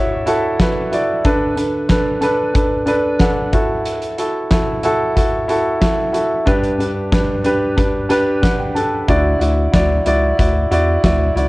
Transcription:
Already playing: D3 E4 F#4 A4 C#5 D5 E5
0.26 E4 F#4 A4, closed hi-hat
0.59 E4 F#4 B4, kick, snare, closed hi-hat
0.92 E4 F#4 D5, closed hi-hat
1.25 D3 D4 A4 B4, kick, closed hi-hat
1.56 D4 A4 B4, closed hi-hat
1.89 D4 A4 B4, kick, snare, closed hi-hat
2.21 D4 A4 B4, closed hi-hat
2.54 D4 A4 B4, kick, closed hi-hat
2.86 D4 A4 B4 D5, closed hi-hat
3.20 D4 A4 B4 F#5, kick, snare, closed hi-hat
3.53 E4 F#4 A4, kick, closed hi-hat
3.85 closed hi-hat
4.02 closed hi-hat
4.18 E4 F#4 A4, closed hi-hat
4.50 E4 F#4 A4, kick, snare, closed hi-hat
4.83 E4 F#4 A4, closed hi-hat
5.15 E4 F#4 A4, kick, closed hi-hat
5.48 E4 F#4 A4, closed hi-hat
5.81 E4 F#4 A4, kick, snare, closed hi-hat
6.13 E4 F#4 A4, closed hi-hat
6.46 G2 D4 G4 B4, kick, closed hi-hat
6.64 closed hi-hat
6.79 D4 G4 B4, closed hi-hat
7.12 D4 G4 B4, kick, snare, closed hi-hat
7.44 D4 G4 B4, closed hi-hat
7.77 D4 G4 B4, kick, closed hi-hat
8.09 D4 G4 B4, closed hi-hat
8.42 D4 G4 B4 F#5, kick, snare, closed hi-hat
8.59 G5
8.75 D4 G4 A4 A5, closed hi-hat
9.08 D2 D3 E4 F#4 D5, kick, closed hi-hat
9.40 D2 E4 F#4 D5, closed hi-hat
9.72 D2 E4 F#4 D5, kick, snare, closed hi-hat
10.06 C#2 E4 F#4 D5, closed hi-hat
10.38 D2 E4 F#4 D5, kick, closed hi-hat
10.71 E2 E4 F#4 D5, closed hi-hat
11.04 D2 E4 F#4 D5, kick, snare, closed hi-hat
11.36 C#2 E4 F#4 D5, closed hi-hat

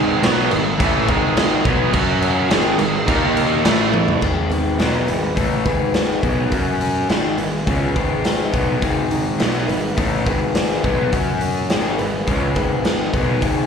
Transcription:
Already playing: G#1 G#2 D#3 G#3 G#4 B4 D#5
0.23 B1 B2 F#3 B3, snare, crash
0.51 G#1 G#2 D#3, crash
0.79 A1 A2 E3 A3, kick, crash
1.08 G#1 G#2 D#3 G#3, kick, crash
1.37 snare, crash
1.65 B1 B2 F#3 B3, kick, crash
1.93 F#2 F#3 C#4 F#4 C#5 F#5, kick, crash
2.22 crash
2.50 G#1 G#2 D#3 G#3 G#4 B4 D#5, snare, crash
2.78 G#1 G#2 D#3, crash
3.08 D#2 D#3 A#3 D#4 A#4 D#5, kick, crash
3.37 crash
3.64 A1 A2 E3 A3 E4 E5 A5, snare, crash
3.94 high tom
4.08 floor tom
4.21 G#1 G#2 D#3 G#3, kick, crash
4.50 B3, open hi-hat
4.79 B1 B2 F#3 B3 D#4, snare, open hi-hat
5.07 G#1 G#2 D#3 B4, open hi-hat
5.36 A1 A2 E3 A3 D#4, kick, open hi-hat
5.65 G#1 G#2 D#3 G#3 B4, kick, open hi-hat
5.94 B3, snare, open hi-hat
6.23 B1 B2 F#3 G#3 B3, kick, open hi-hat
6.51 F#2 F#3 C#4 F#4, kick, open hi-hat
6.81 C#4, open hi-hat
7.09 G#1 G#2 D#3 G#3, snare, open hi-hat
7.37 G#1 G#2 D#3 B4, open hi-hat
7.66 C#2 C#3 G#3 B3 C#4, kick, open hi-hat
7.95 G#1 G#2 D#3 G#3 B4, kick, open hi-hat
8.24 D#4, snare, open hi-hat
8.52 B1 B2 F#3 G#3 B3, kick, open hi-hat
8.81 G#1 G#2 D#3 G#3, kick, open hi-hat
9.11 D#4, open hi-hat
9.38 B1 B2 F#3 B3, snare, open hi-hat
9.68 G#1 G#2 D#3 B4, open hi-hat
9.97 A1 A2 E3 A3 B3, kick, open hi-hat
10.26 G#1 G#2 D#3 G#3 B4, kick, open hi-hat
10.55 D#4, snare, open hi-hat
10.84 B1 B2 F#3 G#3 B3, kick, open hi-hat
11.12 F#2 F#3 C#4 F#4, kick, open hi-hat
11.41 C#4, open hi-hat
11.70 G#1 G#2 D#3 G#3, snare, open hi-hat
11.98 G#1 G#2 D#3 B4, open hi-hat
12.27 C#2 C#3 G#3 B3 C#4, kick, open hi-hat
12.55 G#1 G#2 D#3 G#3 B4, kick, open hi-hat
12.84 D#4, snare, open hi-hat
13.13 B1 B2 F#3 G#3 B3, kick, open hi-hat
13.41 G#1 G#2 D#3 G#3, kick, open hi-hat

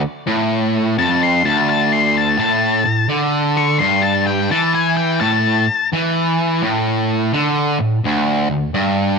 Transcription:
0.27 A2
0.98 F2 A5
1.23 C6
1.44 D2 A5
1.70 A5
1.92 C6
2.17 A5
2.39 A2 A5
2.85 A2
3.09 D3
3.57 C#6
3.79 G2 C6
4.03 A5
4.27 G5
4.51 E3 A5
4.75 G#5
4.97 G5
5.20 A2 A5
5.93 E3
6.63 A2
7.33 D3
7.79 A2
8.04 D2
8.50 D2
8.74 G2

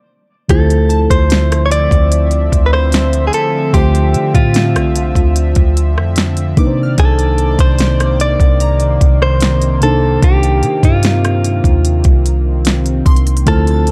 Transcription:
0.48 D2 D3 F3 A3 C4 E4 F4 A4 C5 E5, kick, closed hi-hat
0.70 closed hi-hat
0.89 A5, closed hi-hat
1.10 D2 C5, kick, closed hi-hat
1.30 snare, closed hi-hat
1.52 cross-stick, closed hi-hat
1.66 C#5
1.71 D5, closed hi-hat
1.91 D2, kick, closed hi-hat
2.12 closed hi-hat
2.31 closed hi-hat
2.52 D2, kick, closed hi-hat
2.66 B4
2.73 C5, cross-stick
2.92 snare, closed hi-hat
3.13 closed hi-hat
3.27 G#4
3.33 A4, closed hi-hat
3.73 D2 D3 A3 F4 G4 C5 E5 C6, kick, closed hi-hat
3.95 closed hi-hat
4.14 D3, closed hi-hat
4.34 A2 F4, kick, closed hi-hat
4.54 snare, closed hi-hat
4.75 C2, cross-stick, closed hi-hat
4.96 closed hi-hat
5.15 D2, kick, closed hi-hat
5.36 closed hi-hat
5.55 D2, kick, closed hi-hat
5.77 closed hi-hat
5.97 F2, cross-stick
6.16 snare, closed hi-hat
6.37 closed hi-hat
6.57 C3 D#3 A#3 D4 D#4 B4 D5 D6, kick, closed hi-hat
6.67 C5
6.83 F6
6.98 C2 A4, kick, closed hi-hat
7.19 closed hi-hat
7.38 closed hi-hat
7.59 C2 C5, kick, closed hi-hat
7.79 snare, closed hi-hat
8.00 cross-stick, closed hi-hat
8.20 D5, closed hi-hat
8.40 C2, kick, closed hi-hat
8.60 A#5, closed hi-hat
8.80 closed hi-hat
9.01 C2, kick, closed hi-hat
9.22 C5, cross-stick
9.41 snare, closed hi-hat
9.62 closed hi-hat
9.81 C3 A#3 C4 D4 D#4 A4 C5, closed hi-hat
10.22 C2 G4, kick, closed hi-hat
10.43 closed hi-hat
10.63 C3, closed hi-hat
10.83 G2 F4, kick, closed hi-hat
11.03 snare, closed hi-hat
11.25 cross-stick, closed hi-hat
11.44 closed hi-hat
11.64 D#2, kick, closed hi-hat
11.85 closed hi-hat
12.04 C2, kick, closed hi-hat
12.26 closed hi-hat
12.65 snare, closed hi-hat
12.86 closed hi-hat
13.06 C2 C6, kick, closed hi-hat, open hi-hat
13.16 closed hi-hat
13.27 closed hi-hat
13.37 closed hi-hat
13.46 D2 D3 F3 A3 D4 E4 F4 A4 C5 F6, kick, closed hi-hat
13.67 A6, closed hi-hat
13.87 closed hi-hat

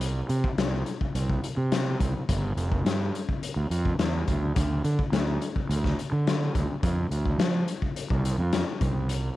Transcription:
Already playing: C2
0.01 closed hi-hat
0.29 C3, closed hi-hat
0.44 kick
0.58 C2, snare, closed hi-hat
0.86 closed hi-hat
1.01 kick
1.15 C2, closed hi-hat
1.29 kick
1.44 closed hi-hat
1.57 C3
1.72 snare, closed hi-hat
2.00 C2, kick, closed hi-hat
2.29 G1, kick, closed hi-hat
2.57 F1, closed hi-hat
2.72 kick
2.85 G2, snare, closed hi-hat
3.15 closed hi-hat
3.29 kick
3.43 closed hi-hat
3.56 D2
3.70 F2, closed hi-hat
3.85 kick
3.99 E2, snare, closed hi-hat
4.28 D2, kick, closed hi-hat
4.56 D2, kick, closed hi-hat
4.84 D3, closed hi-hat
4.99 kick
5.12 D2, snare, closed hi-hat
5.42 closed hi-hat
5.56 kick
5.69 D2, closed hi-hat
5.84 kick, snare
5.99 closed hi-hat
6.12 D3
6.27 snare, closed hi-hat
6.55 D2, kick, closed hi-hat
6.83 F2, kick, closed hi-hat
7.11 D2, closed hi-hat
7.26 kick
7.38 F3, snare, closed hi-hat
7.68 closed hi-hat
7.82 kick
7.96 closed hi-hat
8.10 C2, kick
8.25 closed hi-hat
8.38 F2
8.53 snare, closed hi-hat
8.81 C2, kick, closed hi-hat
9.09 closed hi-hat

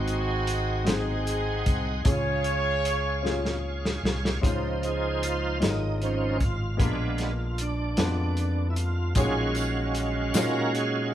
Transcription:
Already playing: G#1 G#2 G#3 C4 D#4 F#4 G#4 C5 D#5 F#5 C6
0.08 closed hi-hat
0.47 closed hi-hat
0.85 G#3 C4 D#4 F#4 C5, snare, closed hi-hat
0.89 C4 D#4 G#4
1.27 closed hi-hat
1.66 C2, kick, closed hi-hat
2.05 C#2 C#3 C#4 F4 G#4 C#5 F5, kick, closed hi-hat
2.09 G#4
2.44 closed hi-hat
2.85 closed hi-hat
3.23 C#4 F4 G#4, snare
3.45 snare
3.85 snare
4.03 C2, snare
4.25 snare
4.41 C#2 C#3 F3 G#3 C#4 D#4 F4 C5, kick, closed hi-hat
4.83 G#4, closed hi-hat
5.23 F4, closed hi-hat
5.60 G#1 G#3 C#4 D#4 F4 G#4, snare, closed hi-hat
5.64 D#4
5.69 A#4
5.98 D#4, closed hi-hat
6.03 F3 C#4 D#4 C5
6.40 F4, kick, closed hi-hat
6.77 A#1 A#2 G#3 B3 D4 F4 A#4, kick, closed hi-hat
7.18 snare, closed hi-hat
7.58 D4, closed hi-hat
7.97 F2 G#3 B3 D4 F4 B4, snare, closed hi-hat
8.37 closed hi-hat
8.70 E4
8.76 F4, closed hi-hat
9.15 A#1 A#2 F#3 G#3 C#4 D#4 F4 F#4 G#4 C#5 F5, kick, closed hi-hat, tambourine
9.55 closed hi-hat, tambourine
9.95 closed hi-hat
10.34 A#2 G#3 D#4 F4 F#4 A#4 C#5, snare, closed hi-hat, tambourine
10.75 G#4, closed hi-hat

